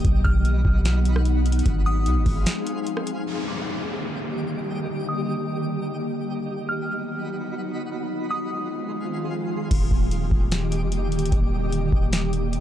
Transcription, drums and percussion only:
0.05 kick loud
0.05 closed hi-hat medium
0.25 kick loud
0.45 closed hi-hat medium
0.65 kick loud
0.85 snare loud
0.85 closed hi-hat medium
1.05 closed hi-hat medium
1.16 cross-stick loud
1.25 closed hi-hat medium
1.46 closed hi-hat medium
1.52 closed hi-hat medium
1.59 closed hi-hat medium
1.66 kick loud
1.66 closed hi-hat medium
2.06 closed hi-hat medium
2.26 kick medium
2.26 open hi-hat medium
2.46 snare loud
2.46 closed hi-hat medium
2.67 closed hi-hat medium
2.87 closed hi-hat medium
2.97 cross-stick loud
3.07 closed hi-hat medium
9.71 kick loud
9.71 closed hi-hat medium
9.71 crash medium
9.91 kick medium
10.11 closed hi-hat medium
10.31 kick medium
10.52 snare loud
10.52 closed hi-hat medium
10.72 closed hi-hat medium
10.92 closed hi-hat medium
11.12 closed hi-hat medium
11.19 closed hi-hat medium
11.25 closed hi-hat medium
11.32 kick loud
11.32 closed hi-hat medium
11.72 closed hi-hat medium
11.92 kick medium
12.13 snare loud
12.13 closed hi-hat medium
12.33 closed hi-hat medium
12.53 closed hi-hat medium

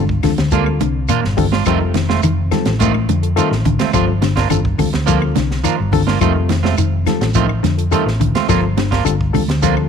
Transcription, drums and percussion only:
0.09 kick medium
0.23 kick medium
0.23 snare soft
0.23 open hi-hat medium
0.23 high conga medium
0.23 low conga medium
0.23 claves medium
0.23 shekere soft
0.38 snare medium
0.38 closed hi-hat medium
0.51 kick medium
0.51 closed hi-hat medium
0.51 high conga medium
0.51 shekere medium
0.66 claves medium
0.80 closed hi-hat medium
0.80 high conga medium
0.80 shekere soft
1.09 closed hi-hat medium
1.09 low conga medium
1.09 claves medium
1.09 shekere medium
1.25 snare soft
1.38 kick medium
1.38 open hi-hat medium
1.38 low conga medium
1.38 shekere soft
1.52 snare medium
1.52 high conga medium
1.66 kick medium
1.66 closed hi-hat medium
1.66 claves medium
1.66 shekere medium
1.94 snare medium
1.94 closed hi-hat soft
1.94 high conga medium
1.94 shekere soft
2.09 snare medium
2.09 high conga medium
2.23 closed hi-hat medium
2.23 low conga medium
2.23 claves medium
2.23 shekere medium
2.51 snare soft
2.51 closed hi-hat soft
2.51 high conga medium
2.51 low conga medium
2.51 claves medium
2.51 shekere soft
2.65 snare medium
2.65 closed hi-hat soft
2.80 kick medium
2.80 closed hi-hat medium
2.80 high conga medium
2.80 shekere medium
2.94 claves medium
3.09 closed hi-hat medium
3.09 high conga medium
3.09 shekere soft
3.23 closed hi-hat soft
3.37 closed hi-hat medium
3.37 claves medium
3.37 shekere medium
3.52 snare soft
3.65 kick medium
3.65 closed hi-hat medium
3.65 low conga medium
3.65 shekere soft
3.79 snare medium
3.79 closed hi-hat medium
3.79 high conga medium
3.93 kick medium
3.93 closed hi-hat medium
3.93 claves medium
3.93 shekere medium
4.22 snare medium
4.22 closed hi-hat soft
4.22 high conga medium
4.22 shekere soft
4.37 kick medium
4.37 snare medium
4.37 closed hi-hat medium
4.50 closed hi-hat medium
4.50 low conga medium
4.50 claves medium
4.50 shekere medium
4.65 kick medium
4.79 kick medium
4.79 open hi-hat medium
4.79 high conga medium
4.79 low conga medium
4.79 claves medium
4.79 shekere soft
4.93 snare medium
4.93 closed hi-hat medium
5.07 kick medium
5.07 closed hi-hat medium
5.07 shekere medium
5.22 claves medium
5.36 snare soft
5.36 closed hi-hat medium
5.36 high conga medium
5.36 shekere soft
5.51 snare soft
5.64 closed hi-hat medium
5.64 claves medium
5.64 shekere medium
5.92 kick medium
5.92 open hi-hat medium
5.92 low conga medium
5.92 shekere soft
6.07 snare medium
6.07 high conga medium
6.21 kick medium
6.21 closed hi-hat medium
6.21 claves medium
6.21 shekere medium
6.49 snare medium
6.49 closed hi-hat soft
6.49 high conga medium
6.49 shekere soft
6.64 snare medium
6.64 high conga medium
6.78 closed hi-hat medium
6.78 claves medium
6.78 shekere medium
7.07 snare soft
7.07 closed hi-hat soft
7.07 high conga medium
7.07 low conga medium
7.07 claves medium
7.07 shekere soft
7.21 snare medium
7.21 closed hi-hat soft
7.34 kick medium
7.34 closed hi-hat medium
7.34 shekere medium
7.49 claves medium
7.64 snare soft
7.64 closed hi-hat soft
7.64 high conga medium
7.64 shekere soft
7.79 closed hi-hat medium
7.92 closed hi-hat medium
7.92 low conga medium
7.92 claves medium
7.92 shekere medium
8.08 snare soft
8.21 kick medium
8.21 closed hi-hat soft
8.21 low conga medium
8.21 shekere soft
8.35 snare medium
8.35 closed hi-hat medium
8.35 high conga medium
8.49 kick medium
8.49 snare soft
8.49 closed hi-hat medium
8.49 claves medium
8.49 shekere medium
8.78 snare medium
8.78 closed hi-hat soft
8.78 high conga medium
8.78 shekere soft
8.92 kick medium
8.92 snare medium
8.92 closed hi-hat soft
9.06 closed hi-hat medium
9.06 claves medium
9.06 shekere medium
9.21 kick medium
9.34 kick medium
9.34 open hi-hat medium
9.34 high conga medium
9.34 low conga medium
9.34 claves medium
9.34 shekere soft
9.49 snare medium
9.49 closed hi-hat medium
9.62 kick medium
9.62 closed hi-hat medium
9.62 shekere medium
9.77 claves medium

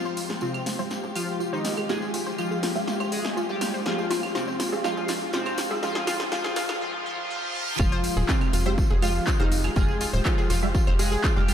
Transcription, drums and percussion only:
0.05 tambourine soft
0.17 open hi-hat loud
0.17 tambourine medium
0.30 snare soft
0.30 tambourine soft
0.41 tambourine soft
0.54 tambourine soft
0.54 claves soft
0.66 snare soft
0.66 open hi-hat loud
0.66 tambourine medium
0.79 tambourine soft
0.90 snare medium
0.90 tambourine medium
1.03 tambourine soft
1.16 open hi-hat loud
1.16 tambourine medium
1.16 claves medium
1.29 tambourine soft
1.40 tambourine medium
1.54 tambourine soft
1.65 snare medium
1.65 open hi-hat loud
1.65 tambourine medium
1.77 tambourine soft
1.77 claves soft
1.89 snare medium
1.89 tambourine medium
2.02 tambourine soft
2.14 open hi-hat loud
2.14 tambourine medium
2.26 tambourine soft
2.38 tambourine medium
2.38 claves soft
2.52 tambourine soft
2.63 snare medium
2.63 open hi-hat loud
2.63 tambourine medium
2.76 tambourine soft
2.88 snare medium
2.88 tambourine medium
3.00 tambourine soft
3.00 claves medium
3.12 open hi-hat loud
3.12 tambourine loud
3.25 snare medium
3.25 tambourine soft
3.37 tambourine medium
3.49 tambourine soft
3.61 snare medium
3.61 open hi-hat loud
3.61 tambourine medium
3.61 claves soft
3.75 tambourine soft
3.86 snare medium
3.86 tambourine medium
3.98 tambourine soft
4.11 snare medium
4.11 open hi-hat loud
4.11 tambourine medium
4.23 tambourine soft
4.23 claves soft
4.35 snare medium
4.35 tambourine medium
4.47 tambourine soft
4.60 snare medium
4.60 open hi-hat loud
4.60 tambourine loud
4.72 tambourine soft
4.84 snare medium
4.84 tambourine medium
4.84 claves soft
4.97 tambourine soft
5.08 snare medium
5.08 open hi-hat loud
5.08 tambourine loud
5.33 snare medium
5.33 tambourine medium
5.45 tambourine soft
5.45 claves medium
5.58 snare medium
5.58 open hi-hat loud
5.58 tambourine medium
5.71 tambourine soft
5.83 snare medium
5.83 tambourine medium
5.95 snare medium
5.95 tambourine soft
6.07 snare medium
6.07 open hi-hat loud
6.07 tambourine loud
6.07 claves medium
6.19 snare medium
6.19 tambourine soft
6.32 snare medium
6.32 tambourine soft
6.44 snare medium
6.44 tambourine soft
6.56 snare loud
6.56 open hi-hat loud
6.56 tambourine medium
6.69 snare medium
6.69 tambourine soft
6.69 claves medium
7.79 kick loud
7.79 tambourine soft
7.79 claves medium
7.92 tambourine soft
8.04 open hi-hat loud
8.04 tambourine loud
8.17 tambourine soft
8.29 kick loud
8.29 clap loud
8.29 tambourine medium
8.41 tambourine soft
8.41 claves medium
8.53 open hi-hat loud
8.53 tambourine loud
8.65 tambourine soft
8.78 kick loud
8.78 tambourine medium
8.90 tambourine soft
9.02 open hi-hat loud
9.02 tambourine loud
9.02 claves medium
9.15 tambourine soft
9.27 kick loud
9.27 clap loud
9.27 tambourine medium
9.40 tambourine soft
9.52 open hi-hat loud
9.52 tambourine medium
9.64 tambourine soft
9.64 claves medium
9.76 kick loud
9.76 tambourine soft
9.88 tambourine soft
10.01 open hi-hat loud
10.01 tambourine loud
10.14 tambourine soft
10.25 kick loud
10.25 clap loud
10.25 tambourine medium
10.25 claves medium
10.38 tambourine soft
10.50 open hi-hat loud
10.50 tambourine medium
10.62 tambourine soft
10.75 kick loud
10.75 tambourine medium
10.87 tambourine soft
10.87 claves medium
10.99 open hi-hat loud
10.99 tambourine loud
11.12 tambourine soft
11.24 kick loud
11.24 clap loud
11.24 tambourine medium
11.37 tambourine soft
11.48 open hi-hat loud
11.48 tambourine loud
11.48 claves medium

